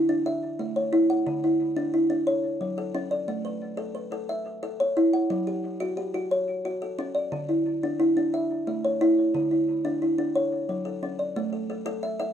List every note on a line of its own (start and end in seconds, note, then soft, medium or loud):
0.00 0.43 E4 medium
0.09 0.26 D4 medium
0.26 0.76 E5 medium
0.59 0.93 A3 medium
0.76 1.26 C#5 medium
0.93 1.26 E4 medium
1.10 1.43 F#5 medium
1.27 1.60 D3 medium
1.44 1.93 E4 medium
1.76 2.09 D4 medium
1.94 2.44 E4 medium
2.10 2.27 D4 medium
2.27 2.78 C#5 medium
2.61 2.94 F#3 medium
2.78 3.28 A4 medium
2.95 3.28 C#4 medium
3.11 3.45 D5 medium
3.28 3.62 A3 medium
3.45 3.94 B4 medium
3.77 4.11 A4 medium
3.95 4.46 B4 medium
4.12 4.46 A4 medium
4.29 4.80 E5 medium
4.63 4.96 A4 medium
4.80 5.30 C#5 medium
4.97 5.30 E4 medium
5.13 5.47 F#5 medium
5.30 5.64 F#3 medium
5.47 5.96 G4 medium
5.80 6.13 F#4 medium
5.97 6.48 G4 medium
6.14 6.48 F#4 medium
6.31 6.82 C#5 medium
6.65 6.99 F#4 medium
6.82 7.32 A4 medium
6.99 7.32 C#4 medium
7.15 7.49 D5 medium
7.32 7.66 D3 medium
7.49 7.98 E4 medium
7.83 8.16 D4 medium
8.00 8.50 E4 medium
8.17 8.33 D4 medium
8.34 8.84 E5 medium
8.67 9.01 A3 medium
8.85 9.35 C#5 medium
9.01 9.35 E4 medium
9.34 9.68 D3 medium
9.51 10.01 E4 medium
9.85 10.17 D4 medium
10.02 10.52 E4 medium
10.18 10.35 D4 medium
10.35 10.86 C#5 medium
10.69 11.03 F#3 medium
10.85 11.36 A4 medium
11.03 11.36 C#4 medium
11.19 11.53 D5 medium
11.36 11.70 A3 medium
11.53 11.69 A4 medium
11.70 11.85 A4 medium
11.86 12.18 A4 medium
12.03 12.18 E5 medium
12.20 12.33 A4 medium
12.20 12.33 E5 medium